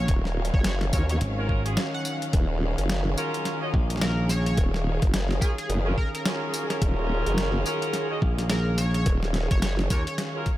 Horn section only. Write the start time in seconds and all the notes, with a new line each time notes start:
0.93 C#4 F4 F#4 A#4
1.38 C#4 F4 F#4 A#4
1.49 C#4 F4 F#4 A#4
1.65 C#4 F4 F#4 G#4
3.17 C#4 F4 F#4 A#4
3.62 C#4 F4 F#4 D#5
5.41 C#4 F4 F#4 A#4
5.86 C#4 F4 F#4 A#4
6.25 C#4 F4 F#4 A#4
6.70 C#4 F4 F#4 A#4
7.65 C#4 F4 F#4 A#4
8.10 C#4 F4 F#4 D#5
9.90 C#4 F4 F#4 A#4
10.35 C#4 F4 F#4 A#4